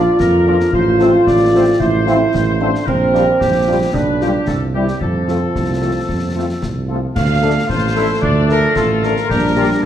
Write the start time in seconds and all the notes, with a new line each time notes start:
Already playing: A#1 F4 D5
0.19 F2 A#4, concert bass drum, snare
0.46 F3 A#3 D4 F4 D5
0.60 snare
0.73 A1 F4 C5, concert bass drum
1.00 F3 A3 C4 F4 C5, snare
1.27 A1 D5, concert bass drum, snare
1.53 F3 A3 C4 F4 C5
1.80 A1 E4 C5, concert bass drum
2.06 F3 A3 C4 E4 F4 C5, snare
2.34 A1, concert bass drum, snare
2.60 F3 A3 C4 D4 F4 C5
2.75 snare
2.86 A#1 C4 A#4, concert bass drum, crash
3.14 F3 G3 D4 F4 G4, snare
3.41 A#1 G4, concert bass drum, snare
3.67 F3 G3 D4 F4 G4
3.93 B1 D4 B4, concert bass drum
4.20 F3 G3 D4 F4 G4, snare
4.47 C2 A4, concert bass drum, snare
4.73 E3 G3 C4 E4 G4
4.88 snare
5.00 F2 F3 A4, concert bass drum
5.27 F3 A3 C4 F4 A4, snare
5.55 C2, concert bass drum, snare
5.81 F3 A3 C4 F4 A4
6.08 F2, concert bass drum, snare
6.34 F3 A3 C4 F4 A4
6.62 C2, concert bass drum, snare
6.88 F3 A3 C4 F4 A4
7.15 D2 F3 A3 F5, concert bass drum, snare, crash
7.42 A3 D4 A4
7.68 A1 F4 C5, concert bass drum, snare
7.96 A3 D4 E4 A4
8.22 D2 D4 D5, concert bass drum
8.49 A3 D4 A4 A#4, snare
8.76 A1 F4 A4, concert bass drum, snare
9.02 A3 D4 A4 A#4, snare
9.16 snare
9.29 A#1 G3 D4 G4, concert bass drum, snare
9.56 A#3 D4 F4 G4